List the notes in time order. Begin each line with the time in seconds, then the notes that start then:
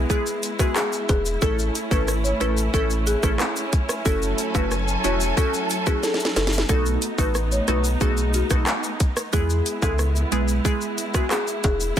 Already playing: G#3 B3 E4
0.10 G#3 B3 E4 G#4, kick, shaker
0.26 shaker
0.43 closed hi-hat, shaker
0.59 G#3 B3 E4 F#4 G#4, kick, cross-stick, shaker
0.76 G#4, cross-stick, clap, shaker
0.92 shaker
1.09 E1 G#4, kick, closed hi-hat, high timbale, shaker
1.25 shaker
1.42 A1 A3 C#4 E4 A4, kick, shaker
1.59 shaker
1.75 closed hi-hat, shaker
1.91 G#1 A3 C#4 E4 A4 B4, kick, shaker
2.08 cross-stick, shaker
2.24 C#5, shaker
2.40 A1 A3 C#4 E4 A4 B4, cross-stick, closed hi-hat, shaker
2.57 shaker
2.74 A1 A3 C#4 E4 A4, kick, shaker
2.90 shaker
3.07 G#4, closed hi-hat, shaker
3.23 A1 A3 C#4 E4 A4, kick, cross-stick, shaker
3.40 cross-stick, clap, shaker
3.56 shaker
3.73 kick, closed hi-hat, shaker
3.89 cross-stick, shaker
4.05 F#1 F#3 A3 C#4 E4 F#4 A4 G#5, kick, shaker
4.22 shaker
4.38 closed hi-hat, shaker
4.55 F#1 A3 C#4 E4 F#4 B4, kick, high timbale, shaker
4.71 cross-stick, shaker
4.88 shaker
5.04 E1 A3 C#4 E4 F#4 C#5, closed hi-hat, shaker
5.21 shaker
5.37 A3 C#4 E4 F#4 A4, kick, shaker
5.54 shaker
5.70 closed hi-hat, shaker
5.87 A3 C#4 E4 F#4 G#4, kick, cross-stick, shaker
6.03 A4, snare, shaker
6.14 snare
6.20 shaker
6.25 snare
6.36 F#1 A4, snare, closed hi-hat, high timbale, shaker
6.47 snare
6.53 shaker
6.58 snare
6.69 B1 A3 B3 D#4 F#4 A4, kick, shaker
6.86 shaker
7.02 closed hi-hat, shaker
7.18 A1 A3 B3 D#4 F#4 B4, kick, shaker
7.35 cross-stick, shaker
7.52 C#5, shaker
7.68 B1 A3 B3 D#4 F#4 B4, cross-stick, closed hi-hat, shaker
7.84 shaker
8.01 B1 A3 B3 D#4 F#4 G#4, kick, shaker
8.17 shaker
8.34 F#4, closed hi-hat, shaker
8.50 B1 A3 B3 D#4 F#4, kick, cross-stick, shaker
8.67 cross-stick, clap, shaker
8.84 shaker
9.00 kick, closed hi-hat, shaker
9.17 cross-stick, shaker
9.33 E2 G#3 B3 E4 G#4, kick, shaker
9.50 shaker
9.66 closed hi-hat, shaker
9.82 C#2 G#3 B3 E4 G#4 A4, kick, high timbale, shaker
9.99 cross-stick, shaker
10.16 shaker
10.32 B1 G#3 B3 E4 G#4 B4, closed hi-hat, shaker
10.48 shaker
10.65 G#3 B3 E4 G#4, kick, shaker
10.81 shaker
10.98 closed hi-hat, shaker
11.14 G#3 B3 E4 F#4 G#4, kick, cross-stick, shaker
11.31 G#4, cross-stick, clap, shaker
11.47 shaker
11.64 E1 G#4, kick, closed hi-hat, high timbale, shaker
11.80 shaker
11.97 shaker